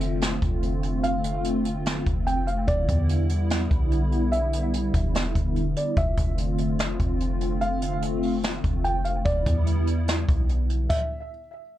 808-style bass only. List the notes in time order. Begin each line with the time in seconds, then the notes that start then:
Already playing: F1
0.42 F1
2.06 F1
2.68 E1
2.89 E2
3.71 B1
4.94 E1
5.35 E1
5.97 F1
6.18 F1
7.00 F1
8.64 F1
9.26 E1
9.46 E2
10.29 B1